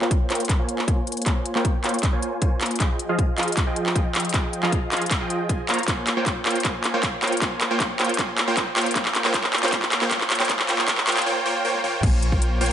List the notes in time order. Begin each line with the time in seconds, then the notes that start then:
0.02 A#3 F4 C5 C#5 G5, clap
0.11 kick, closed hi-hat
0.30 A#3 F4 C5 C#5 G5, clap, closed hi-hat
0.35 closed hi-hat
0.40 closed hi-hat
0.45 closed hi-hat
0.49 kick, clap, closed hi-hat
0.59 A#3 F4 C5 C#5 G#5
0.69 closed hi-hat
0.79 clap
0.88 A#3 F4 C5 C#5 G#5, kick, closed hi-hat
1.07 closed hi-hat
1.12 closed hi-hat
1.17 closed hi-hat
1.22 closed hi-hat
1.26 A#3 F4 C5 C#5 G#5, kick, clap, closed hi-hat
1.46 closed hi-hat
1.55 A#3 F4 C5 C#5 G5, clap
1.65 kick, closed hi-hat
1.84 A#3 F4 C5 C#5 G5, clap, closed hi-hat
1.89 closed hi-hat
1.94 closed hi-hat
1.99 closed hi-hat
2.03 kick, clap, closed hi-hat
2.13 A#3 F4 C5 C#5 G#5
2.23 closed hi-hat
2.42 A#3 F4 C5 C#5 G#5, kick, closed hi-hat
2.61 clap, closed hi-hat
2.66 closed hi-hat
2.71 closed hi-hat
2.76 closed hi-hat
2.80 F3 F4 G#4 D#5 G5, kick, clap, closed hi-hat
2.99 closed hi-hat
3.09 F3 F4 G#4 D#5 F5
3.19 kick, closed hi-hat
3.38 F3 F4 G#4 D#5 F5, clap, closed hi-hat
3.43 closed hi-hat
3.48 closed hi-hat
3.52 closed hi-hat
3.57 kick, clap, closed hi-hat
3.67 F3 F4 G#4 D#5 G5
3.76 closed hi-hat
3.86 clap
3.96 F3 F4 G#4 D#5 G5, kick, closed hi-hat
4.15 clap, closed hi-hat
4.20 closed hi-hat
4.25 closed hi-hat
4.29 closed hi-hat
4.34 F3 F4 G#4 D#5 G5, kick, clap, closed hi-hat
4.53 closed hi-hat
4.63 F3 F4 G#4 D#5 F5, clap
4.72 kick, closed hi-hat
4.92 F3 F4 G#4 D#5 F5, clap, closed hi-hat
4.97 closed hi-hat
5.02 closed hi-hat
5.06 closed hi-hat
5.11 kick, clap, closed hi-hat
5.21 F3 F4 G#4 D#5 G5
5.30 closed hi-hat
5.49 F3 F4 G#4 D#5 G#5, kick, closed hi-hat
5.69 A#3 F4 C5 C#5 A#5, clap, closed hi-hat
5.74 closed hi-hat
5.79 closed hi-hat
5.83 closed hi-hat
5.88 A#3 F4 C5 C#5 G#5, kick, clap, closed hi-hat
6.07 clap, closed hi-hat
6.17 A#3 F4 C5 C#5 G5
6.26 kick, clap, closed hi-hat
6.46 A#3 F4 C5 C#5 G5, clap, closed hi-hat
6.51 closed hi-hat
6.55 closed hi-hat
6.60 closed hi-hat
6.65 A#3 F4 C5 C#5 G#5, kick, clap, closed hi-hat
6.84 clap, closed hi-hat
6.94 A#3 F4 C5 C#5 G5
7.03 kick, clap, closed hi-hat
7.22 A#3 F4 C5 C#5 G5, clap, closed hi-hat
7.27 closed hi-hat
7.32 closed hi-hat
7.37 closed hi-hat
7.42 A#3 F4 C5 C#5 G#5, kick, clap, closed hi-hat
7.61 clap, closed hi-hat
7.71 A#3 F4 C5 C#5 G5
7.80 kick, clap, closed hi-hat
7.99 A#3 F4 C5 C#5 G5, clap, closed hi-hat
8.04 closed hi-hat
8.09 closed hi-hat
8.14 closed hi-hat
8.19 A#3 F4 C5 C#5 G#5, kick, clap, closed hi-hat
8.38 clap, closed hi-hat
8.48 A#3 F4 C5 C#5 G5
8.57 kick, clap, closed hi-hat
8.76 A#3 F4 C5 C#5 G5, clap, closed hi-hat
8.81 closed hi-hat
8.86 closed hi-hat
8.91 closed hi-hat
8.96 A#3 F4 C5 C#5 G5, kick, clap, closed hi-hat
9.05 clap
9.15 clap, closed hi-hat
9.25 A#3 F4 C5 C#5 G5, clap
9.34 A#3 F4 C5 C#5 G5, kick, clap, closed hi-hat
9.44 clap
9.53 clap, closed hi-hat
9.58 closed hi-hat
9.63 A#3 F4 C5 C#5 G5, clap, closed hi-hat
9.68 closed hi-hat
9.72 A#3 F4 C5 C#5 G5, kick, clap, closed hi-hat
9.82 clap
9.92 clap, closed hi-hat
10.02 A#3 F4 C5 C#5 G5, clap
10.11 F4 C5 C#5 G5, kick, clap, closed hi-hat
10.21 clap
10.30 clap, closed hi-hat
10.35 closed hi-hat
10.40 A#3 F4 C5 C#5 G5, clap, closed hi-hat
10.45 closed hi-hat
10.49 A#3 F4 C5 C#5 G5, kick, clap, closed hi-hat
10.59 clap
10.69 A#3 F4 C5 C#5 G5, clap, closed hi-hat
10.79 clap
10.88 A#3 F4 C5 C#5, kick, clap, closed hi-hat
10.98 clap
11.07 A#3 F4 C5 C#5 G5, clap, closed hi-hat
11.12 closed hi-hat
11.17 clap, closed hi-hat
11.22 closed hi-hat
11.26 A#3 F4 C5 C#5 G5
11.46 A#3 F4 C5 C#5 G5
11.65 A#3 F4 C5 C#5 G5
11.75 high tom
11.84 A#3 F4 C5 C#5 G5, mid tom
11.94 mid tom
12.03 A#1 A#3 F4 G#5, kick, closed hi-hat, crash
12.23 closed hi-hat
12.32 A#3 F4 C5 C#5 G5, kick
12.42 closed hi-hat
12.61 A#3 F4 C5 C#5 G5, open hi-hat
12.66 closed hi-hat